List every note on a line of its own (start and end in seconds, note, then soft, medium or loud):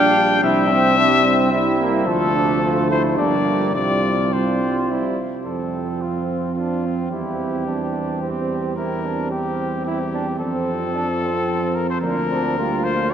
0.00 0.43 A#1 medium
0.00 0.41 G3 medium
0.00 0.45 D4 medium
0.00 0.42 G5 loud
0.41 2.06 C2 medium
0.41 1.50 G3 medium
0.41 1.52 C4 medium
0.41 0.72 E4 medium
0.41 1.51 E5 loud
0.71 0.99 C4 medium
0.97 1.25 D4 medium
1.26 1.52 C4 medium
1.52 2.08 G3 medium
1.52 1.79 C4 medium
1.52 2.06 E4 medium
1.52 1.79 E5 medium
1.79 2.09 A#3 medium
2.06 3.19 D2 medium
2.06 3.20 F3 medium
2.06 3.21 A3 medium
2.06 2.34 F4 medium
2.06 2.87 A4 medium
2.35 2.62 D4 medium
2.63 2.90 F4 medium
2.90 3.19 E4 medium
2.90 3.03 C5 medium
3.18 3.77 G1 medium
3.18 3.75 G3 medium
3.18 3.74 A#3 medium
3.18 3.74 D4 medium
3.18 3.75 D5 medium
3.75 5.19 C2 medium
3.75 4.32 G3 medium
3.75 5.15 C4 medium
3.75 4.32 F4 medium
3.75 4.35 D5 medium
4.33 4.89 G3 medium
4.33 4.92 F4 medium
4.33 4.90 C5 medium
4.90 5.18 G3 medium
4.90 5.19 E4 medium
5.46 7.07 F2 soft
5.46 7.13 F3 soft
5.46 8.73 C4 soft
5.46 6.54 C4 soft
5.46 6.03 A4 medium
6.02 6.55 F4 medium
6.56 6.87 D4 soft
6.56 7.10 F4 medium
6.86 7.12 C4 soft
7.11 10.36 E2 soft
7.11 10.40 G3 soft
7.11 7.66 E4 soft
7.11 8.73 G4 medium
7.67 8.20 D4 soft
8.22 8.76 C4 medium
8.76 11.99 C4 medium
8.76 9.06 E4 medium
8.76 9.30 A#4 medium
9.05 9.33 D4 soft
9.31 9.86 C4 medium
9.31 9.84 G4 medium
9.85 9.99 E4 medium
9.85 10.39 G4 medium
10.14 10.26 D4 medium
10.39 12.00 F2 medium
10.39 12.00 F3 medium
10.39 10.94 C4 medium
10.39 11.77 A4 medium
10.95 11.07 D4 medium
11.22 11.74 C4 medium
11.75 11.89 A#4 medium
11.90 12.01 C5 medium
12.02 13.14 D2 medium
12.02 12.59 F3 medium
12.02 12.28 A#3 medium
12.02 12.15 D4 medium
12.02 12.86 A#4 medium
12.30 12.59 C4 medium
12.30 12.57 D4 medium
12.57 12.86 G3 medium
12.57 13.13 A#3 medium
12.57 13.13 F4 medium
12.84 13.14 F3 medium
12.84 13.13 C5 medium